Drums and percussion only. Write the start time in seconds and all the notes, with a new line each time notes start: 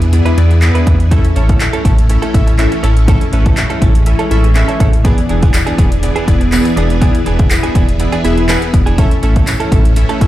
0.02 closed hi-hat
0.13 closed hi-hat
0.26 closed hi-hat
0.38 closed hi-hat
0.51 closed hi-hat
0.62 clap, closed hi-hat
0.75 closed hi-hat
0.87 kick, closed hi-hat
1.00 closed hi-hat
1.11 kick, closed hi-hat
1.25 closed hi-hat
1.36 closed hi-hat
1.49 kick, closed hi-hat
1.60 clap, closed hi-hat
1.73 closed hi-hat
1.85 kick, closed hi-hat
1.98 closed hi-hat
2.10 closed hi-hat
2.23 closed hi-hat
2.34 kick, closed hi-hat
2.47 closed hi-hat
2.59 clap, closed hi-hat
2.72 closed hi-hat
2.84 closed hi-hat
2.97 closed hi-hat
3.08 kick, closed hi-hat
3.21 closed hi-hat
3.33 closed hi-hat
3.46 kick, closed hi-hat
3.57 clap, closed hi-hat
3.70 closed hi-hat
3.82 kick, closed hi-hat
3.95 closed hi-hat
4.06 closed hi-hat
4.19 closed hi-hat
4.31 closed hi-hat
4.44 closed hi-hat
4.55 clap, closed hi-hat
4.69 closed hi-hat
4.80 kick, closed hi-hat
4.93 closed hi-hat
5.05 kick, closed hi-hat
5.18 closed hi-hat
5.29 closed hi-hat
5.43 kick, closed hi-hat
5.54 clap, closed hi-hat, tambourine
5.67 closed hi-hat
5.78 kick, closed hi-hat
5.92 closed hi-hat
6.03 closed hi-hat
6.16 closed hi-hat
6.28 kick, closed hi-hat
6.41 closed hi-hat
6.52 clap, closed hi-hat, tambourine
6.65 closed hi-hat
6.77 closed hi-hat
6.90 closed hi-hat
7.02 kick, closed hi-hat
7.15 closed hi-hat
7.26 closed hi-hat
7.39 kick, closed hi-hat
7.51 clap, closed hi-hat, tambourine
7.64 closed hi-hat
7.75 kick, closed hi-hat
7.89 closed hi-hat
8.00 closed hi-hat
8.13 closed hi-hat
8.25 closed hi-hat
8.38 closed hi-hat
8.49 clap, closed hi-hat, tambourine
8.62 closed hi-hat
8.74 kick, closed hi-hat
8.87 closed hi-hat
8.98 kick, closed hi-hat
9.11 closed hi-hat
9.23 closed hi-hat
9.36 kick, closed hi-hat
9.47 clap, closed hi-hat, tambourine
9.60 closed hi-hat
9.72 kick, closed hi-hat
9.85 closed hi-hat
9.96 closed hi-hat
10.09 closed hi-hat
10.21 kick, closed hi-hat